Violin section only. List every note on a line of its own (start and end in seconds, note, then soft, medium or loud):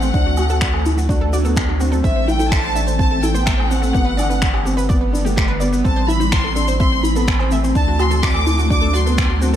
0.00 1.29 F#5 loud
2.04 2.26 E5 loud
2.27 2.52 G5 loud
2.50 2.97 A5 loud
2.98 3.21 A5 loud
3.23 3.71 G5 loud
3.70 5.13 F#5 loud
5.86 6.08 A5 loud
6.08 6.32 B5 loud
6.33 6.78 C6 loud
6.79 7.02 C6 loud
7.04 7.52 B5 medium
7.76 7.98 A5 loud
8.01 8.24 C6 loud
8.24 8.70 D6 loud
8.72 8.93 D6 loud
8.96 9.43 C6 medium